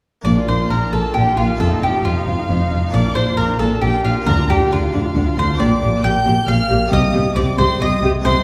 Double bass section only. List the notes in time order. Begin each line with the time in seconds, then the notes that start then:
0.25 A#1
0.48 A#1
0.69 A#1
0.93 A#1
1.16 A#1
1.38 A#1
1.60 F1
1.82 F1
2.04 F1
2.27 F1
2.49 F1
2.71 F1
2.93 A#1
3.16 A#1
3.38 A#1
3.61 A#1
3.83 A#1
4.05 A#1
4.27 D2
4.49 D2
4.72 D2
4.94 D2
5.15 D2
5.37 D2
5.60 A#1
5.82 A#1
6.04 A#1
6.26 A#1
6.48 A#1
6.71 A#1
6.92 C2
7.14 C2
7.36 C2
7.58 C2
7.81 C2
8.03 C2
8.25 C2